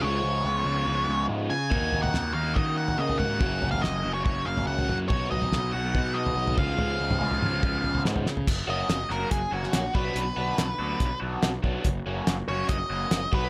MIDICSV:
0, 0, Header, 1, 6, 480
1, 0, Start_track
1, 0, Key_signature, 6, "major"
1, 0, Tempo, 421941
1, 35, Time_signature, 4, 2, 24, 8
1, 15350, End_track
2, 0, Start_track
2, 0, Title_t, "Lead electric guitar"
2, 0, Program_c, 0, 29
2, 16, Note_on_c, 0, 73, 82
2, 1422, Note_off_c, 0, 73, 0
2, 1708, Note_on_c, 0, 80, 96
2, 2271, Note_off_c, 0, 80, 0
2, 2304, Note_on_c, 0, 78, 84
2, 2660, Note_off_c, 0, 78, 0
2, 2664, Note_on_c, 0, 77, 79
2, 2900, Note_on_c, 0, 75, 82
2, 2919, Note_off_c, 0, 77, 0
2, 3132, Note_off_c, 0, 75, 0
2, 3157, Note_on_c, 0, 78, 92
2, 3390, Note_on_c, 0, 75, 77
2, 3405, Note_off_c, 0, 78, 0
2, 3615, Note_on_c, 0, 78, 92
2, 3617, Note_off_c, 0, 75, 0
2, 4217, Note_off_c, 0, 78, 0
2, 4222, Note_on_c, 0, 77, 78
2, 4342, Note_off_c, 0, 77, 0
2, 4344, Note_on_c, 0, 75, 76
2, 4705, Note_off_c, 0, 75, 0
2, 4710, Note_on_c, 0, 73, 85
2, 4816, Note_off_c, 0, 73, 0
2, 4830, Note_on_c, 0, 73, 78
2, 5066, Note_on_c, 0, 77, 91
2, 5083, Note_off_c, 0, 73, 0
2, 5310, Note_off_c, 0, 77, 0
2, 5314, Note_on_c, 0, 78, 80
2, 5652, Note_off_c, 0, 78, 0
2, 5784, Note_on_c, 0, 73, 79
2, 6015, Note_off_c, 0, 73, 0
2, 6038, Note_on_c, 0, 75, 87
2, 6486, Note_off_c, 0, 75, 0
2, 6511, Note_on_c, 0, 78, 92
2, 6989, Note_on_c, 0, 75, 94
2, 7012, Note_off_c, 0, 78, 0
2, 7442, Note_off_c, 0, 75, 0
2, 7489, Note_on_c, 0, 77, 84
2, 9122, Note_off_c, 0, 77, 0
2, 9896, Note_on_c, 0, 75, 81
2, 10357, Note_off_c, 0, 75, 0
2, 10368, Note_on_c, 0, 70, 71
2, 10592, Note_off_c, 0, 70, 0
2, 10596, Note_on_c, 0, 68, 83
2, 10834, Note_off_c, 0, 68, 0
2, 10837, Note_on_c, 0, 66, 80
2, 11307, Note_off_c, 0, 66, 0
2, 11318, Note_on_c, 0, 71, 85
2, 12718, Note_off_c, 0, 71, 0
2, 14203, Note_on_c, 0, 73, 81
2, 14435, Note_off_c, 0, 73, 0
2, 14439, Note_on_c, 0, 75, 93
2, 15137, Note_off_c, 0, 75, 0
2, 15179, Note_on_c, 0, 71, 74
2, 15350, Note_off_c, 0, 71, 0
2, 15350, End_track
3, 0, Start_track
3, 0, Title_t, "Overdriven electric guitar"
3, 0, Program_c, 1, 29
3, 0, Note_on_c, 1, 49, 86
3, 0, Note_on_c, 1, 53, 94
3, 0, Note_on_c, 1, 56, 89
3, 0, Note_on_c, 1, 59, 101
3, 0, Note_on_c, 1, 65, 94
3, 483, Note_off_c, 1, 49, 0
3, 497, Note_on_c, 1, 49, 76
3, 501, Note_off_c, 1, 53, 0
3, 506, Note_off_c, 1, 56, 0
3, 510, Note_off_c, 1, 59, 0
3, 512, Note_on_c, 1, 53, 67
3, 516, Note_off_c, 1, 65, 0
3, 524, Note_on_c, 1, 56, 74
3, 535, Note_on_c, 1, 59, 83
3, 543, Note_on_c, 1, 65, 86
3, 1693, Note_off_c, 1, 49, 0
3, 1701, Note_off_c, 1, 53, 0
3, 1707, Note_off_c, 1, 56, 0
3, 1712, Note_off_c, 1, 59, 0
3, 1716, Note_off_c, 1, 65, 0
3, 1941, Note_on_c, 1, 51, 88
3, 1957, Note_on_c, 1, 58, 97
3, 1972, Note_on_c, 1, 63, 101
3, 1983, Note_on_c, 1, 66, 93
3, 2655, Note_off_c, 1, 51, 0
3, 2667, Note_off_c, 1, 66, 0
3, 2671, Note_off_c, 1, 63, 0
3, 2672, Note_on_c, 1, 66, 87
3, 2687, Note_on_c, 1, 63, 80
3, 2693, Note_off_c, 1, 58, 0
3, 2698, Note_on_c, 1, 58, 74
3, 2714, Note_on_c, 1, 51, 72
3, 3858, Note_on_c, 1, 42, 86
3, 3867, Note_on_c, 1, 49, 97
3, 3869, Note_off_c, 1, 63, 0
3, 3872, Note_off_c, 1, 51, 0
3, 3872, Note_off_c, 1, 58, 0
3, 3876, Note_on_c, 1, 54, 94
3, 3886, Note_on_c, 1, 58, 95
3, 3896, Note_on_c, 1, 61, 97
3, 3897, Note_off_c, 1, 66, 0
3, 3902, Note_on_c, 1, 66, 105
3, 4575, Note_off_c, 1, 42, 0
3, 4578, Note_off_c, 1, 66, 0
3, 4579, Note_off_c, 1, 49, 0
3, 4582, Note_on_c, 1, 66, 90
3, 4583, Note_off_c, 1, 61, 0
3, 4589, Note_off_c, 1, 58, 0
3, 4597, Note_on_c, 1, 61, 83
3, 4604, Note_on_c, 1, 58, 91
3, 4605, Note_off_c, 1, 54, 0
3, 4609, Note_on_c, 1, 54, 75
3, 4619, Note_on_c, 1, 49, 76
3, 4625, Note_on_c, 1, 42, 78
3, 5778, Note_off_c, 1, 66, 0
3, 5780, Note_off_c, 1, 49, 0
3, 5785, Note_off_c, 1, 61, 0
3, 5785, Note_on_c, 1, 47, 97
3, 5789, Note_off_c, 1, 58, 0
3, 5792, Note_off_c, 1, 54, 0
3, 5799, Note_off_c, 1, 42, 0
3, 5803, Note_on_c, 1, 54, 102
3, 5814, Note_on_c, 1, 59, 96
3, 5821, Note_on_c, 1, 63, 99
3, 5833, Note_on_c, 1, 66, 109
3, 6499, Note_off_c, 1, 47, 0
3, 6501, Note_off_c, 1, 66, 0
3, 6509, Note_off_c, 1, 54, 0
3, 6514, Note_on_c, 1, 66, 92
3, 6518, Note_off_c, 1, 63, 0
3, 6529, Note_on_c, 1, 63, 90
3, 6534, Note_off_c, 1, 59, 0
3, 6539, Note_on_c, 1, 59, 80
3, 6551, Note_on_c, 1, 54, 66
3, 6559, Note_on_c, 1, 47, 75
3, 7465, Note_off_c, 1, 66, 0
3, 7472, Note_off_c, 1, 63, 0
3, 7474, Note_off_c, 1, 47, 0
3, 7477, Note_off_c, 1, 59, 0
3, 7478, Note_on_c, 1, 49, 96
3, 7481, Note_off_c, 1, 54, 0
3, 7486, Note_on_c, 1, 53, 97
3, 7500, Note_on_c, 1, 56, 89
3, 7508, Note_on_c, 1, 59, 94
3, 7519, Note_on_c, 1, 65, 98
3, 8174, Note_off_c, 1, 49, 0
3, 8186, Note_off_c, 1, 53, 0
3, 8188, Note_on_c, 1, 49, 72
3, 8198, Note_off_c, 1, 56, 0
3, 8199, Note_on_c, 1, 53, 76
3, 8202, Note_off_c, 1, 59, 0
3, 8207, Note_off_c, 1, 65, 0
3, 8213, Note_on_c, 1, 56, 87
3, 8224, Note_on_c, 1, 59, 82
3, 8230, Note_on_c, 1, 65, 88
3, 9383, Note_off_c, 1, 49, 0
3, 9388, Note_off_c, 1, 53, 0
3, 9395, Note_off_c, 1, 56, 0
3, 9400, Note_off_c, 1, 59, 0
3, 9403, Note_off_c, 1, 65, 0
3, 9868, Note_on_c, 1, 66, 91
3, 9875, Note_on_c, 1, 61, 88
3, 9880, Note_on_c, 1, 54, 72
3, 9883, Note_on_c, 1, 58, 81
3, 10189, Note_off_c, 1, 66, 0
3, 10192, Note_off_c, 1, 61, 0
3, 10195, Note_off_c, 1, 54, 0
3, 10196, Note_off_c, 1, 58, 0
3, 10343, Note_on_c, 1, 66, 83
3, 10346, Note_on_c, 1, 61, 77
3, 10352, Note_on_c, 1, 58, 66
3, 10355, Note_on_c, 1, 54, 65
3, 10667, Note_off_c, 1, 66, 0
3, 10668, Note_off_c, 1, 61, 0
3, 10671, Note_off_c, 1, 58, 0
3, 10673, Note_off_c, 1, 54, 0
3, 10823, Note_on_c, 1, 66, 87
3, 10832, Note_on_c, 1, 61, 90
3, 10834, Note_on_c, 1, 58, 78
3, 10840, Note_on_c, 1, 54, 65
3, 11147, Note_off_c, 1, 66, 0
3, 11151, Note_off_c, 1, 61, 0
3, 11152, Note_off_c, 1, 58, 0
3, 11155, Note_off_c, 1, 54, 0
3, 11311, Note_on_c, 1, 66, 78
3, 11318, Note_on_c, 1, 62, 76
3, 11320, Note_on_c, 1, 59, 73
3, 11326, Note_on_c, 1, 54, 67
3, 11631, Note_off_c, 1, 66, 0
3, 11634, Note_off_c, 1, 62, 0
3, 11635, Note_off_c, 1, 59, 0
3, 11638, Note_off_c, 1, 54, 0
3, 11792, Note_on_c, 1, 66, 99
3, 11796, Note_on_c, 1, 62, 84
3, 11799, Note_on_c, 1, 59, 81
3, 11805, Note_on_c, 1, 54, 65
3, 12111, Note_off_c, 1, 66, 0
3, 12113, Note_off_c, 1, 62, 0
3, 12115, Note_off_c, 1, 59, 0
3, 12117, Note_off_c, 1, 54, 0
3, 12272, Note_on_c, 1, 66, 84
3, 12275, Note_on_c, 1, 62, 80
3, 12282, Note_on_c, 1, 54, 72
3, 12283, Note_on_c, 1, 59, 70
3, 12591, Note_off_c, 1, 66, 0
3, 12592, Note_off_c, 1, 62, 0
3, 12596, Note_off_c, 1, 54, 0
3, 12596, Note_off_c, 1, 59, 0
3, 12745, Note_on_c, 1, 66, 98
3, 12753, Note_on_c, 1, 59, 79
3, 12753, Note_on_c, 1, 62, 87
3, 12756, Note_on_c, 1, 54, 73
3, 13067, Note_off_c, 1, 66, 0
3, 13071, Note_off_c, 1, 59, 0
3, 13071, Note_off_c, 1, 62, 0
3, 13073, Note_off_c, 1, 54, 0
3, 13229, Note_on_c, 1, 66, 83
3, 13231, Note_on_c, 1, 62, 73
3, 13237, Note_on_c, 1, 59, 72
3, 13239, Note_on_c, 1, 54, 74
3, 13477, Note_off_c, 1, 66, 0
3, 13478, Note_off_c, 1, 62, 0
3, 13481, Note_off_c, 1, 59, 0
3, 13482, Note_off_c, 1, 54, 0
3, 13722, Note_on_c, 1, 66, 86
3, 13724, Note_on_c, 1, 58, 89
3, 13724, Note_on_c, 1, 61, 90
3, 13730, Note_on_c, 1, 54, 82
3, 14034, Note_off_c, 1, 66, 0
3, 14035, Note_off_c, 1, 58, 0
3, 14035, Note_off_c, 1, 61, 0
3, 14038, Note_off_c, 1, 54, 0
3, 14202, Note_on_c, 1, 66, 84
3, 14204, Note_on_c, 1, 61, 79
3, 14210, Note_on_c, 1, 58, 77
3, 14218, Note_on_c, 1, 54, 66
3, 14513, Note_off_c, 1, 66, 0
3, 14515, Note_off_c, 1, 61, 0
3, 14517, Note_off_c, 1, 58, 0
3, 14521, Note_off_c, 1, 54, 0
3, 14676, Note_on_c, 1, 66, 82
3, 14681, Note_on_c, 1, 61, 95
3, 14683, Note_on_c, 1, 58, 89
3, 14689, Note_on_c, 1, 54, 73
3, 14990, Note_off_c, 1, 66, 0
3, 14992, Note_off_c, 1, 61, 0
3, 14993, Note_off_c, 1, 58, 0
3, 14996, Note_off_c, 1, 54, 0
3, 15154, Note_on_c, 1, 66, 81
3, 15160, Note_on_c, 1, 62, 77
3, 15165, Note_on_c, 1, 59, 73
3, 15169, Note_on_c, 1, 54, 73
3, 15350, Note_off_c, 1, 54, 0
3, 15350, Note_off_c, 1, 59, 0
3, 15350, Note_off_c, 1, 62, 0
3, 15350, Note_off_c, 1, 66, 0
3, 15350, End_track
4, 0, Start_track
4, 0, Title_t, "Analog synth pad"
4, 0, Program_c, 2, 89
4, 1950, Note_on_c, 2, 51, 71
4, 1952, Note_on_c, 2, 58, 65
4, 1957, Note_on_c, 2, 66, 79
4, 1958, Note_on_c, 2, 61, 67
4, 3856, Note_off_c, 2, 51, 0
4, 3860, Note_off_c, 2, 66, 0
4, 3874, Note_on_c, 2, 54, 71
4, 3893, Note_on_c, 2, 70, 82
4, 5760, Note_off_c, 2, 58, 0
4, 5763, Note_off_c, 2, 61, 0
4, 5780, Note_on_c, 2, 63, 69
4, 5784, Note_on_c, 2, 68, 79
4, 5789, Note_off_c, 2, 70, 0
4, 5790, Note_on_c, 2, 59, 63
4, 7444, Note_off_c, 2, 54, 0
4, 7455, Note_off_c, 2, 63, 0
4, 7472, Note_on_c, 2, 53, 79
4, 7485, Note_on_c, 2, 61, 70
4, 9598, Note_off_c, 2, 68, 0
4, 9601, Note_off_c, 2, 59, 0
4, 9618, Note_off_c, 2, 53, 0
4, 9624, Note_off_c, 2, 61, 0
4, 9662, Note_on_c, 2, 54, 66
4, 9663, Note_on_c, 2, 66, 80
4, 9664, Note_on_c, 2, 58, 66
4, 9671, Note_on_c, 2, 49, 72
4, 11312, Note_on_c, 2, 50, 80
4, 11319, Note_off_c, 2, 58, 0
4, 11320, Note_on_c, 2, 59, 70
4, 11322, Note_off_c, 2, 49, 0
4, 13456, Note_off_c, 2, 50, 0
4, 13460, Note_off_c, 2, 59, 0
4, 13467, Note_on_c, 2, 58, 72
4, 13471, Note_on_c, 2, 49, 72
4, 15134, Note_off_c, 2, 58, 0
4, 15136, Note_off_c, 2, 49, 0
4, 15161, Note_on_c, 2, 59, 71
4, 15168, Note_on_c, 2, 50, 73
4, 15350, Note_off_c, 2, 50, 0
4, 15350, Note_off_c, 2, 54, 0
4, 15350, Note_off_c, 2, 59, 0
4, 15350, Note_off_c, 2, 66, 0
4, 15350, End_track
5, 0, Start_track
5, 0, Title_t, "Picked electric bass"
5, 0, Program_c, 3, 34
5, 34, Note_on_c, 3, 37, 87
5, 259, Note_off_c, 3, 37, 0
5, 266, Note_on_c, 3, 37, 80
5, 495, Note_off_c, 3, 37, 0
5, 504, Note_on_c, 3, 37, 83
5, 734, Note_off_c, 3, 37, 0
5, 743, Note_on_c, 3, 37, 83
5, 973, Note_off_c, 3, 37, 0
5, 989, Note_on_c, 3, 37, 86
5, 1217, Note_off_c, 3, 37, 0
5, 1228, Note_on_c, 3, 37, 79
5, 1456, Note_off_c, 3, 37, 0
5, 1470, Note_on_c, 3, 44, 93
5, 1698, Note_off_c, 3, 44, 0
5, 1708, Note_on_c, 3, 49, 82
5, 1937, Note_off_c, 3, 49, 0
5, 1951, Note_on_c, 3, 39, 92
5, 2178, Note_off_c, 3, 39, 0
5, 2186, Note_on_c, 3, 39, 73
5, 2416, Note_off_c, 3, 39, 0
5, 2432, Note_on_c, 3, 39, 81
5, 2659, Note_off_c, 3, 39, 0
5, 2668, Note_on_c, 3, 39, 79
5, 2897, Note_off_c, 3, 39, 0
5, 2917, Note_on_c, 3, 51, 92
5, 3366, Note_off_c, 3, 51, 0
5, 3394, Note_on_c, 3, 49, 89
5, 3621, Note_off_c, 3, 49, 0
5, 3636, Note_on_c, 3, 44, 79
5, 3879, Note_on_c, 3, 30, 88
5, 3896, Note_off_c, 3, 44, 0
5, 4103, Note_off_c, 3, 30, 0
5, 4120, Note_on_c, 3, 30, 87
5, 4344, Note_off_c, 3, 30, 0
5, 4363, Note_on_c, 3, 30, 88
5, 4585, Note_off_c, 3, 30, 0
5, 4604, Note_on_c, 3, 30, 83
5, 4826, Note_off_c, 3, 30, 0
5, 4841, Note_on_c, 3, 30, 94
5, 5065, Note_off_c, 3, 30, 0
5, 5078, Note_on_c, 3, 30, 87
5, 5303, Note_off_c, 3, 30, 0
5, 5313, Note_on_c, 3, 37, 93
5, 5541, Note_off_c, 3, 37, 0
5, 5559, Note_on_c, 3, 42, 78
5, 5784, Note_off_c, 3, 42, 0
5, 5805, Note_on_c, 3, 35, 97
5, 6027, Note_off_c, 3, 35, 0
5, 6035, Note_on_c, 3, 35, 84
5, 6262, Note_off_c, 3, 35, 0
5, 6277, Note_on_c, 3, 35, 82
5, 6503, Note_off_c, 3, 35, 0
5, 6527, Note_on_c, 3, 35, 90
5, 6749, Note_off_c, 3, 35, 0
5, 6767, Note_on_c, 3, 47, 93
5, 7213, Note_off_c, 3, 47, 0
5, 7242, Note_on_c, 3, 35, 94
5, 7467, Note_off_c, 3, 35, 0
5, 7485, Note_on_c, 3, 37, 93
5, 7708, Note_off_c, 3, 37, 0
5, 7717, Note_on_c, 3, 37, 94
5, 7944, Note_off_c, 3, 37, 0
5, 7964, Note_on_c, 3, 37, 83
5, 8188, Note_off_c, 3, 37, 0
5, 8204, Note_on_c, 3, 37, 90
5, 8428, Note_off_c, 3, 37, 0
5, 8445, Note_on_c, 3, 37, 86
5, 8668, Note_off_c, 3, 37, 0
5, 8681, Note_on_c, 3, 37, 92
5, 8906, Note_off_c, 3, 37, 0
5, 8918, Note_on_c, 3, 37, 88
5, 9145, Note_off_c, 3, 37, 0
5, 9159, Note_on_c, 3, 44, 91
5, 9386, Note_off_c, 3, 44, 0
5, 9392, Note_on_c, 3, 49, 90
5, 9622, Note_off_c, 3, 49, 0
5, 9644, Note_on_c, 3, 30, 93
5, 9800, Note_off_c, 3, 30, 0
5, 9872, Note_on_c, 3, 30, 75
5, 10032, Note_off_c, 3, 30, 0
5, 10114, Note_on_c, 3, 30, 82
5, 10273, Note_off_c, 3, 30, 0
5, 10351, Note_on_c, 3, 30, 75
5, 10511, Note_off_c, 3, 30, 0
5, 10595, Note_on_c, 3, 30, 94
5, 10754, Note_off_c, 3, 30, 0
5, 10832, Note_on_c, 3, 30, 83
5, 10992, Note_off_c, 3, 30, 0
5, 11074, Note_on_c, 3, 34, 82
5, 11233, Note_off_c, 3, 34, 0
5, 11321, Note_on_c, 3, 35, 84
5, 11478, Note_off_c, 3, 35, 0
5, 11550, Note_on_c, 3, 35, 100
5, 11711, Note_off_c, 3, 35, 0
5, 11796, Note_on_c, 3, 35, 82
5, 11955, Note_off_c, 3, 35, 0
5, 12036, Note_on_c, 3, 35, 79
5, 12195, Note_off_c, 3, 35, 0
5, 12279, Note_on_c, 3, 38, 77
5, 12437, Note_off_c, 3, 38, 0
5, 12517, Note_on_c, 3, 35, 85
5, 12675, Note_off_c, 3, 35, 0
5, 12764, Note_on_c, 3, 35, 90
5, 12920, Note_off_c, 3, 35, 0
5, 13003, Note_on_c, 3, 35, 89
5, 13159, Note_off_c, 3, 35, 0
5, 13239, Note_on_c, 3, 35, 88
5, 13396, Note_off_c, 3, 35, 0
5, 13483, Note_on_c, 3, 30, 102
5, 13639, Note_off_c, 3, 30, 0
5, 13727, Note_on_c, 3, 30, 83
5, 13881, Note_off_c, 3, 30, 0
5, 13966, Note_on_c, 3, 30, 85
5, 14120, Note_off_c, 3, 30, 0
5, 14203, Note_on_c, 3, 30, 90
5, 14358, Note_off_c, 3, 30, 0
5, 14438, Note_on_c, 3, 30, 91
5, 14595, Note_off_c, 3, 30, 0
5, 14677, Note_on_c, 3, 30, 91
5, 14833, Note_off_c, 3, 30, 0
5, 14913, Note_on_c, 3, 30, 89
5, 15070, Note_off_c, 3, 30, 0
5, 15163, Note_on_c, 3, 35, 86
5, 15317, Note_off_c, 3, 35, 0
5, 15350, End_track
6, 0, Start_track
6, 0, Title_t, "Drums"
6, 1949, Note_on_c, 9, 43, 84
6, 1953, Note_on_c, 9, 36, 101
6, 2062, Note_off_c, 9, 43, 0
6, 2067, Note_off_c, 9, 36, 0
6, 2190, Note_on_c, 9, 43, 72
6, 2304, Note_off_c, 9, 43, 0
6, 2317, Note_on_c, 9, 43, 80
6, 2431, Note_off_c, 9, 43, 0
6, 2435, Note_on_c, 9, 43, 87
6, 2436, Note_on_c, 9, 38, 74
6, 2549, Note_off_c, 9, 43, 0
6, 2550, Note_off_c, 9, 38, 0
6, 2916, Note_on_c, 9, 36, 96
6, 2920, Note_on_c, 9, 43, 77
6, 3030, Note_off_c, 9, 36, 0
6, 3034, Note_off_c, 9, 43, 0
6, 3278, Note_on_c, 9, 43, 76
6, 3391, Note_off_c, 9, 43, 0
6, 3520, Note_on_c, 9, 43, 68
6, 3633, Note_off_c, 9, 43, 0
6, 3638, Note_on_c, 9, 43, 81
6, 3752, Note_off_c, 9, 43, 0
6, 3875, Note_on_c, 9, 36, 101
6, 3875, Note_on_c, 9, 43, 78
6, 3989, Note_off_c, 9, 36, 0
6, 3989, Note_off_c, 9, 43, 0
6, 4118, Note_on_c, 9, 43, 76
6, 4232, Note_off_c, 9, 43, 0
6, 4239, Note_on_c, 9, 43, 82
6, 4353, Note_off_c, 9, 43, 0
6, 4366, Note_on_c, 9, 43, 90
6, 4368, Note_on_c, 9, 38, 85
6, 4480, Note_off_c, 9, 43, 0
6, 4481, Note_off_c, 9, 38, 0
6, 4843, Note_on_c, 9, 36, 92
6, 4844, Note_on_c, 9, 43, 81
6, 4956, Note_off_c, 9, 36, 0
6, 4958, Note_off_c, 9, 43, 0
6, 5204, Note_on_c, 9, 43, 79
6, 5318, Note_off_c, 9, 43, 0
6, 5444, Note_on_c, 9, 43, 76
6, 5558, Note_off_c, 9, 43, 0
6, 5567, Note_on_c, 9, 43, 81
6, 5681, Note_off_c, 9, 43, 0
6, 5804, Note_on_c, 9, 36, 106
6, 5807, Note_on_c, 9, 43, 85
6, 5918, Note_off_c, 9, 36, 0
6, 5921, Note_off_c, 9, 43, 0
6, 6050, Note_on_c, 9, 43, 82
6, 6164, Note_off_c, 9, 43, 0
6, 6165, Note_on_c, 9, 43, 81
6, 6279, Note_off_c, 9, 43, 0
6, 6284, Note_on_c, 9, 43, 88
6, 6285, Note_on_c, 9, 38, 80
6, 6398, Note_off_c, 9, 43, 0
6, 6399, Note_off_c, 9, 38, 0
6, 6765, Note_on_c, 9, 36, 93
6, 6772, Note_on_c, 9, 43, 77
6, 6879, Note_off_c, 9, 36, 0
6, 6886, Note_off_c, 9, 43, 0
6, 7125, Note_on_c, 9, 43, 82
6, 7238, Note_off_c, 9, 43, 0
6, 7365, Note_on_c, 9, 43, 81
6, 7479, Note_off_c, 9, 43, 0
6, 7482, Note_on_c, 9, 36, 101
6, 7483, Note_on_c, 9, 43, 79
6, 7596, Note_off_c, 9, 36, 0
6, 7597, Note_off_c, 9, 43, 0
6, 7719, Note_on_c, 9, 43, 89
6, 7833, Note_off_c, 9, 43, 0
6, 8084, Note_on_c, 9, 43, 81
6, 8084, Note_on_c, 9, 47, 81
6, 8198, Note_off_c, 9, 43, 0
6, 8198, Note_off_c, 9, 47, 0
6, 8202, Note_on_c, 9, 43, 86
6, 8315, Note_off_c, 9, 43, 0
6, 8322, Note_on_c, 9, 43, 67
6, 8435, Note_off_c, 9, 43, 0
6, 8445, Note_on_c, 9, 47, 75
6, 8559, Note_off_c, 9, 47, 0
6, 8680, Note_on_c, 9, 43, 80
6, 8681, Note_on_c, 9, 36, 106
6, 8794, Note_off_c, 9, 43, 0
6, 8795, Note_off_c, 9, 36, 0
6, 8921, Note_on_c, 9, 43, 68
6, 9034, Note_off_c, 9, 43, 0
6, 9041, Note_on_c, 9, 43, 81
6, 9155, Note_off_c, 9, 43, 0
6, 9161, Note_on_c, 9, 38, 76
6, 9275, Note_off_c, 9, 38, 0
6, 9279, Note_on_c, 9, 43, 80
6, 9393, Note_off_c, 9, 43, 0
6, 9402, Note_on_c, 9, 38, 58
6, 9515, Note_off_c, 9, 38, 0
6, 9522, Note_on_c, 9, 43, 83
6, 9635, Note_off_c, 9, 43, 0
6, 9641, Note_on_c, 9, 36, 106
6, 9645, Note_on_c, 9, 49, 109
6, 9755, Note_off_c, 9, 36, 0
6, 9759, Note_off_c, 9, 49, 0
6, 10119, Note_on_c, 9, 42, 71
6, 10120, Note_on_c, 9, 38, 106
6, 10232, Note_off_c, 9, 42, 0
6, 10234, Note_off_c, 9, 38, 0
6, 10359, Note_on_c, 9, 38, 30
6, 10473, Note_off_c, 9, 38, 0
6, 10593, Note_on_c, 9, 42, 65
6, 10597, Note_on_c, 9, 36, 106
6, 10707, Note_off_c, 9, 42, 0
6, 10711, Note_off_c, 9, 36, 0
6, 10959, Note_on_c, 9, 38, 27
6, 11071, Note_on_c, 9, 42, 68
6, 11072, Note_off_c, 9, 38, 0
6, 11073, Note_on_c, 9, 38, 106
6, 11185, Note_off_c, 9, 42, 0
6, 11186, Note_off_c, 9, 38, 0
6, 11318, Note_on_c, 9, 36, 96
6, 11431, Note_off_c, 9, 36, 0
6, 11557, Note_on_c, 9, 42, 75
6, 11671, Note_off_c, 9, 42, 0
6, 12038, Note_on_c, 9, 42, 69
6, 12040, Note_on_c, 9, 38, 105
6, 12152, Note_off_c, 9, 42, 0
6, 12153, Note_off_c, 9, 38, 0
6, 12516, Note_on_c, 9, 42, 64
6, 12519, Note_on_c, 9, 36, 110
6, 12630, Note_off_c, 9, 42, 0
6, 12633, Note_off_c, 9, 36, 0
6, 12997, Note_on_c, 9, 42, 70
6, 12998, Note_on_c, 9, 38, 109
6, 13111, Note_off_c, 9, 42, 0
6, 13112, Note_off_c, 9, 38, 0
6, 13240, Note_on_c, 9, 36, 81
6, 13354, Note_off_c, 9, 36, 0
6, 13474, Note_on_c, 9, 42, 63
6, 13479, Note_on_c, 9, 36, 117
6, 13588, Note_off_c, 9, 42, 0
6, 13592, Note_off_c, 9, 36, 0
6, 13959, Note_on_c, 9, 42, 73
6, 13960, Note_on_c, 9, 38, 112
6, 14073, Note_off_c, 9, 42, 0
6, 14074, Note_off_c, 9, 38, 0
6, 14433, Note_on_c, 9, 42, 64
6, 14440, Note_on_c, 9, 36, 104
6, 14547, Note_off_c, 9, 42, 0
6, 14554, Note_off_c, 9, 36, 0
6, 14916, Note_on_c, 9, 42, 66
6, 14917, Note_on_c, 9, 38, 100
6, 15030, Note_off_c, 9, 42, 0
6, 15031, Note_off_c, 9, 38, 0
6, 15162, Note_on_c, 9, 36, 107
6, 15275, Note_off_c, 9, 36, 0
6, 15350, End_track
0, 0, End_of_file